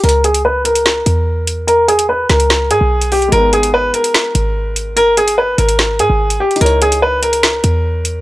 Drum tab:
HH |xx--x-x-----x-x-----x-------x---|x---x-x-----x-x-----x-----x-o-x-|x---x-x-----x-x-----x-------x---|x---x-x-----x-x-----x-----x---xx|
SD |----------------o---------------|------------o---o---------------|----------------o---------------|----------------o---------------|

HH |xx--x-x-----x-x-----x-------x---|
SD |----------------o---------------|